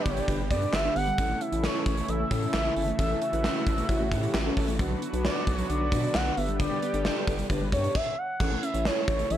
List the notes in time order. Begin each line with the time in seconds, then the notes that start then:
Already playing: D3 G3 B3 D4 G4 B4
0.01 D5
0.06 G1 B3, kick, closed hi-hat
0.10 C#5
0.17 G3 D5, closed hi-hat
0.28 G1 D3 D4 G4 B4, kick, closed hi-hat
0.39 G3
0.51 G2 B3 D4 G4 B4 D5, kick, closed hi-hat
0.62 D4, closed hi-hat
0.73 G1 D5 E5, snare, clap
0.85 D4 G4 B4
0.96 G1 B3 F#5, open hi-hat
1.07 G3, closed hi-hat
1.18 A1 C#3 E3 A3 C#4 E4 A4, kick, closed hi-hat
1.29 A3
1.41 C#4 E5, closed hi-hat
1.52 A1 C#4 E4 A4, closed hi-hat
1.63 C#5 E5, snare
1.75 E4
1.86 A1 C#4 C#5, kick, closed hi-hat
1.97 A3, closed hi-hat
2.08 A1 E3 C#4 E4 A4 E5, closed hi-hat
2.20 A3
2.31 A2 C#4 E4 A4, kick, closed hi-hat
2.42 E4, closed hi-hat
2.54 A1 E5, snare, clap
2.65 C#4 E4 A4
2.76 G1 C#4, open hi-hat
2.87 A3, closed hi-hat
2.99 A1 E3 C#4 E4 F#4 A4 E5, kick, closed hi-hat
3.10 A3
3.21 C#4 E5, closed hi-hat
3.33 A1 C#4 E4 B4, closed hi-hat
3.44 E5, snare
3.55 E4
3.67 A1 C#4, kick, closed hi-hat
3.78 A3, closed hi-hat
3.89 A1 E3 C#4 E4 F#4, kick, closed hi-hat
4.00 A3
4.12 A2 C#4 E4 G4, kick, closed hi-hat
4.23 E4, closed hi-hat
4.34 A1 E5, snare, clap
4.45 C#4 E4 A4
4.57 A1 C#4, kick, open hi-hat
4.68 A3, closed hi-hat
4.79 B1 D3 F#3 B3 D4 F#4 B4, kick, closed hi-hat
4.91 F#3
5.02 B3, closed hi-hat
5.13 B1 D4 F#4 B4, closed hi-hat
5.24 D5, snare
5.36 D4
5.47 B1 B3, kick, closed hi-hat
5.58 F#3, closed hi-hat
5.69 B1 D3 D4 F#4 B4 D5, closed hi-hat
5.81 F#3
5.92 B2 B3 D4 F#4 B4, kick, closed hi-hat
6.03 D4, closed hi-hat
6.14 B1 D5 F#5, snare, clap
6.26 D4 F#4 B4
6.37 G1 G3 B3 D4 G4 B4 E5, open hi-hat
6.49 G3, closed hi-hat
6.60 D3 D5, kick, closed hi-hat
6.71 G3
6.82 B3, closed hi-hat
6.94 G1 D4 G4 A4, closed hi-hat
7.05 D5, snare
7.16 D4
7.27 G1 B3, kick, closed hi-hat
7.39 G3, closed hi-hat
7.50 G1 D3 D4 G4 B4, kick, closed hi-hat
7.61 G3
7.72 G2 B3 D4 G4 C#5, kick, closed hi-hat
7.84 D4, closed hi-hat
7.95 E5, kick, crash
8.18 F#5
8.40 A1 C#3 E3 A3 C#4 E4 A4 C#5, kick, crash
8.51 A3
8.63 C#4 E5, closed hi-hat
8.74 A1 C#4 E4 A4 C#5, closed hi-hat
8.85 C#5 E5, snare
8.97 E4
9.08 A1 C#4 C#5, kick, closed hi-hat
9.19 A3, closed hi-hat
9.30 A1 E3 C#4 E4 A4 C#5 E5, closed hi-hat